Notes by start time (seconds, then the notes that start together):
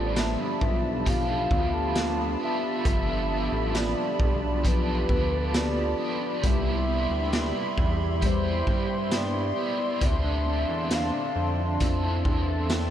Already playing: A1 G2 D3 F3 B3 D4 F4 G4 A4 D5 A5 B5
0.16 B3 E5, snare, closed hi-hat, tambourine
0.39 D4
0.61 B1 B3, kick
0.84 D4
1.05 F3 B3 D4 F5, kick, closed hi-hat
1.10 A4
1.29 D4
1.51 D2 B3 F5, kick
1.73 A4
1.95 B3, snare, closed hi-hat, tambourine
2.18 D4
2.40 B3 D4 A4
2.44 F3 E5
2.63 D4
2.84 G1 G2 D3 F3, kick, closed hi-hat
2.88 B3 D4 A4
3.08 D4
3.30 B3
3.52 A1 A4
3.75 B3 D5, snare, closed hi-hat, tambourine
3.97 D4
4.20 B1 B3, kick
4.42 D4
4.63 F3 B3 D4 B4, kick, closed hi-hat
4.68 A4
4.87 D4
5.09 D2 B3, kick
5.31 A4
5.54 B3 F4 D5, snare, closed hi-hat, tambourine
5.76 D4
5.98 B3 D4 A4
6.03 F3
6.21 D4
6.42 C2 C3 G3 B3 E5 B5 C6, kick, closed hi-hat
6.46 E4 G4 E5
6.66 E4
6.88 B3
7.10 D2 G4
7.33 B3 D5 E5, snare, closed hi-hat, tambourine
7.55 E4
7.78 E2, kick
8.00 E4
8.21 G3 E4 E5, kick, closed hi-hat
8.26 G4 C5
8.44 E4
8.67 G2, kick
8.89 G4
9.11 B3, snare, closed hi-hat, tambourine
9.16 D5
9.34 E4
9.56 B3 E4 G4
9.60 B3
9.79 E4
10.00 D2 D3 C4 D4 D5 A5, kick, closed hi-hat
10.05 D4 A4 E5
10.24 D4
10.46 C4
10.69 E2 A4
10.91 C4 A5, snare, closed hi-hat, tambourine
10.95 F5
11.13 D4
11.36 F2 C4
11.58 D4
11.80 F2 C4 E4 E5 A5, kick, closed hi-hat
11.84 A4
12.03 E4
12.25 E2 C4, kick
12.48 A4
12.70 C4 G5, snare, closed hi-hat, tambourine